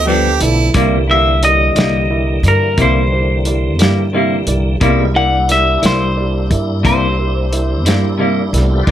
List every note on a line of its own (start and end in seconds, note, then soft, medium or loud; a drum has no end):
0.00 0.37 D2 medium
0.00 0.70 D3 medium
0.00 0.70 F3 medium
0.00 0.70 A3 medium
0.00 0.70 B3 medium
0.06 0.27 G2 medium
0.06 0.28 F3 medium
0.06 0.28 B3 medium
0.06 0.29 D4 medium
0.06 0.32 F4 medium
0.06 0.44 G4 medium
0.06 0.32 A4 soft
0.06 0.33 B4 medium
0.06 0.33 D5 medium
0.41 0.72 B1 medium
0.41 0.74 E4 medium
0.41 0.67 F4 medium
0.41 0.67 A4 medium
0.41 0.67 B4 medium
0.41 0.67 D5 medium
0.41 closed hi-hat medium
0.73 1.72 C2 medium
0.73 0.95 C3 medium
0.73 4.77 D3 medium
0.73 4.77 E3 medium
0.73 4.77 G3 medium
0.73 0.95 G3 medium
0.73 0.95 A#3 medium
0.73 1.00 E4 medium
0.73 0.96 E4 medium
0.73 1.00 G4 medium
0.73 1.01 A#4 medium
0.73 1.01 D5 medium
0.73 kick loud
0.73 closed hi-hat medium
1.08 1.30 G3 soft
1.08 1.29 A#3 soft
1.08 1.28 E4 soft
1.08 1.34 E4 soft
1.08 1.34 G4 soft
1.08 1.34 A#4 soft
1.08 1.34 E5 soft
1.08 1.44 E5 medium
1.43 1.68 E4 medium
1.43 1.68 G4 soft
1.43 1.68 A#4 soft
1.43 1.68 D5 medium
1.43 2.48 D#5 medium
1.43 closed hi-hat medium
1.75 2.40 C2 medium
1.75 1.98 A#3 soft
1.75 2.02 E4 medium
1.75 1.97 E4 soft
1.75 2.02 G4 medium
1.75 2.02 A#4 soft
1.75 2.02 D5 medium
1.75 snare loud
1.75 closed hi-hat medium
1.79 1.98 G3 soft
2.10 2.36 E4 medium
2.10 2.36 G4 soft
2.10 2.36 A#4 soft
2.10 2.36 E5 medium
2.43 2.75 G2 medium
2.43 2.70 E4 soft
2.43 2.70 G4 soft
2.43 2.70 A#4 soft
2.43 2.70 D5 medium
2.43 closed hi-hat medium
2.48 2.81 A#4 medium
2.78 3.79 C2 medium
2.78 2.98 C3 medium
2.78 2.99 G3 medium
2.78 2.99 A#3 medium
2.78 3.03 E4 soft
2.78 3.00 E4 medium
2.78 3.03 G4 soft
2.78 3.03 A#4 soft
2.78 3.04 E5 medium
2.78 kick medium
2.78 closed hi-hat medium
2.82 3.77 C5 medium
3.11 3.37 E4 soft
3.11 3.37 G4 soft
3.11 3.37 A#4 soft
3.11 3.38 C5 medium
3.45 3.71 E4 soft
3.45 3.71 G4 soft
3.45 3.72 A#4 soft
3.45 3.72 D5 medium
3.45 closed hi-hat medium
3.79 4.43 G2 medium
3.79 4.01 A#3 soft
3.79 4.05 E4 medium
3.79 4.00 E4 soft
3.79 4.05 G4 medium
3.79 4.05 A#4 medium
3.79 4.05 D5 medium
3.79 snare loud
3.79 closed hi-hat medium
3.83 4.02 G3 soft
4.13 4.34 C3 medium
4.13 4.34 G3 medium
4.13 4.35 A#3 medium
4.13 4.39 E4 medium
4.13 4.35 E4 medium
4.13 4.39 G4 medium
4.13 4.39 A#4 medium
4.13 4.39 E5 medium
4.46 4.78 C2 medium
4.46 4.72 E4 medium
4.46 4.73 G4 medium
4.46 4.73 A#4 soft
4.46 4.73 D5 medium
4.46 closed hi-hat soft
4.81 5.79 C2 medium
4.81 5.01 C3 medium
4.81 5.02 G3 medium
4.81 5.15 G#3 medium
4.81 5.02 A#3 medium
4.81 5.15 B3 medium
4.81 5.15 D#4 medium
4.81 5.07 E4 medium
4.81 5.02 E4 medium
4.81 5.15 F4 medium
4.81 5.07 G4 medium
4.81 5.07 A#4 medium
4.81 5.07 D5 medium
4.81 kick loud
4.81 closed hi-hat medium
5.14 8.84 G3 medium
5.14 5.37 G3 soft
5.14 8.84 A#3 medium
5.14 5.36 A#3 soft
5.14 8.64 D4 medium
5.14 5.35 E4 soft
5.14 5.40 E4 soft
5.14 8.66 E4 medium
5.14 5.41 G4 soft
5.14 5.41 A#4 soft
5.14 5.41 D5 soft
5.14 5.47 F#5 medium
5.49 5.74 E4 soft
5.49 5.74 G4 soft
5.49 5.75 A#4 soft
5.49 5.75 D5 medium
5.49 5.85 E5 medium
5.49 snare soft
5.49 closed hi-hat medium
5.82 6.46 C2 medium
5.82 6.04 G3 soft
5.82 6.03 A#3 soft
5.82 6.08 E4 medium
5.82 6.03 E4 soft
5.82 6.08 G4 soft
5.82 6.08 A#4 soft
5.82 6.08 D5 medium
5.82 snare loud
5.82 closed hi-hat medium
5.86 6.48 C5 medium
6.17 6.42 E4 medium
6.17 6.42 G4 soft
6.17 6.42 A#4 soft
6.17 6.42 D5 medium
6.50 6.82 G2 medium
6.50 6.76 E4 soft
6.50 6.76 G4 soft
6.50 6.76 A#4 soft
6.50 6.76 E5 medium
6.50 kick medium
6.50 closed hi-hat medium
6.83 7.85 C2 medium
6.83 7.04 C3 medium
6.83 7.04 G3 medium
6.83 7.05 A#3 medium
6.83 7.10 E4 soft
6.83 7.05 E4 medium
6.83 7.10 G4 soft
6.83 7.10 A#4 soft
6.83 8.17 C5 medium
6.83 7.10 D5 medium
6.83 kick loud
6.83 closed hi-hat medium
7.18 7.43 E4 soft
7.18 7.43 G4 soft
7.18 7.44 A#4 soft
7.18 7.44 C5 medium
7.52 7.77 E4 soft
7.52 7.77 G4 soft
7.52 7.78 A#4 soft
7.52 7.78 E5 medium
7.52 closed hi-hat medium
7.85 8.49 G2 medium
7.85 8.07 G3 soft
7.85 8.07 A#3 soft
7.85 8.06 E4 soft
7.85 8.11 E4 medium
7.85 8.11 G4 medium
7.85 8.11 A#4 soft
7.85 8.12 D5 medium
7.85 snare loud
7.85 closed hi-hat medium
8.18 8.39 C3 medium
8.18 8.40 G3 medium
8.18 8.40 A#3 medium
8.18 8.44 E4 medium
8.18 8.41 E4 medium
8.18 8.45 G4 medium
8.18 8.45 A#4 medium
8.18 8.45 D5 medium
8.53 8.84 C2 medium
8.53 8.80 A3 medium
8.53 8.78 E4 medium
8.53 8.79 G4 medium
8.53 8.79 A#4 medium
8.53 8.79 D5 medium
8.53 snare soft
8.53 closed hi-hat medium
8.59 8.81 B3 medium
8.59 8.82 C4 medium
8.65 8.84 D4 medium
8.65 8.85 E4 medium
8.70 8.87 F4 medium
8.70 8.88 G4 medium
8.75 8.89 A4 medium
8.75 8.91 B4 medium
8.81 8.91 C5 medium
8.81 8.91 D5 medium
8.87 8.91 C2 medium
8.87 8.91 C3 medium
8.87 8.91 E3 medium
8.87 8.91 G3 medium
8.87 8.91 A#3 medium
8.87 8.91 C4 medium
8.87 8.91 E4 medium
8.87 8.91 G4 medium
8.87 8.91 A#4 medium
8.87 8.91 D5 medium
8.87 kick medium
8.87 crash medium